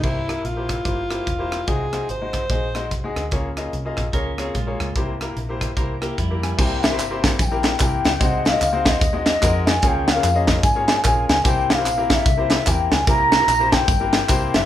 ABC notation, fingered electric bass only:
X:1
M:4/4
L:1/8
Q:"Swing" 1/4=148
K:Cphr
V:1 name="Fingered electric bass" clef=bass
C,,2 B,,,2 G,,,2 =E,,,2 | C,,2 A,,,2 B,,,2 C,, =D,, | D,,2 C,, B,,, D,,2 B,,, D,, | C,,2 B,,,2 C,,2 F,,2 |
C,,2 G,,,2 B,,,2 C,, D,, | C,,2 D,,2 E,,2 F,,2 | D,,2 F,,2 A,,2 B,,, D,, | C,,2 B,,,2 C,,2 =E,, D,, |
C,,2 B,,,2 G,,,2 C,, _G,,, |]